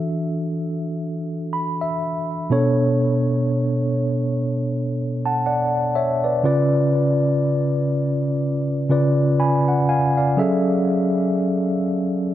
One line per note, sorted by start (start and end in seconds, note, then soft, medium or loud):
0.00 2.46 E3 medium
0.00 2.47 D4 medium
0.00 2.47 F#4 medium
0.00 2.48 A4 medium
0.00 1.80 E5 medium
1.53 1.79 B5 medium
1.81 2.47 E5 medium
2.50 3.84 B2 medium
2.50 3.84 B3 medium
2.50 3.85 D4 medium
2.50 3.85 A4 medium
2.50 3.85 C#5 medium
5.26 5.45 F#5 soft
5.26 5.45 A5 medium
5.46 5.93 D5 medium
5.46 5.93 F#5 medium
5.95 6.23 C#5 medium
5.95 6.22 E5 medium
6.24 6.44 B4 soft
6.24 6.45 D5 medium
6.43 7.77 C#3 medium
6.43 7.78 C#4 medium
6.43 7.78 F4 medium
6.43 7.78 B4 medium
6.43 7.79 D5 medium
8.89 9.58 C#3 medium
8.89 9.58 C#4 medium
8.89 9.58 F4 medium
8.89 9.59 B4 medium
8.89 9.40 D5 medium
9.40 9.87 G#5 medium
9.40 9.86 B5 medium
9.68 9.87 F#5 medium
9.89 10.16 F5 medium
9.89 10.16 G#5 medium
10.17 10.64 D5 medium
10.17 10.64 F5 medium
10.37 11.71 F#3 medium
10.37 11.71 C#4 medium
10.37 11.72 G#4 medium
10.37 11.72 A4 medium
10.37 11.72 E5 medium